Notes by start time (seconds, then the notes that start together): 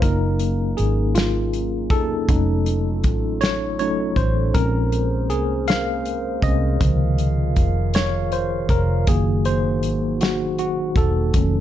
0.02 F#1 F#3 A#3 C#4 D#4 A#4, kick, closed hi-hat
0.39 closed hi-hat
0.77 G#1 G#4, closed hi-hat
1.15 F4, snare, closed hi-hat
1.53 closed hi-hat
1.90 E1 A#3 D#4 G#4 A4, kick, closed hi-hat
2.29 F1 F#3 A3 C#4 D#4 F4 A4, kick, closed hi-hat
2.66 closed hi-hat
3.04 A1, kick, closed hi-hat
3.41 C#5, snare, closed hi-hat
3.79 F#3 A3 C#4 D#4 C#5, closed hi-hat
4.16 A1 C5, kick, closed hi-hat
4.54 A#1 G#3 A#3 C4 C#4 G#4 A#4 C5, kick, closed hi-hat
4.92 closed hi-hat
5.30 C2 G#4, closed hi-hat
5.68 F5, snare, closed hi-hat
6.05 closed hi-hat
6.42 C2 G#3 C4 C#4 D#5, kick, closed hi-hat
6.80 C#2 C3 D#3 F3 F4 F5, kick, closed hi-hat
7.18 closed hi-hat
7.56 F1, kick, closed hi-hat
7.94 C#5, snare, closed hi-hat
8.32 C5, closed hi-hat
8.69 F1 A#4, kick, closed hi-hat
9.07 F#1 D#3 F#3 A#3 D#4 F#4 G#4, kick, closed hi-hat
9.45 C5, closed hi-hat
9.83 G#1, closed hi-hat
10.21 F#4, snare, closed hi-hat
10.58 F#4, closed hi-hat
10.96 E1 A4, kick, closed hi-hat
11.34 F1 D#3 F#3 A3 C#4 F4 A4, kick, closed hi-hat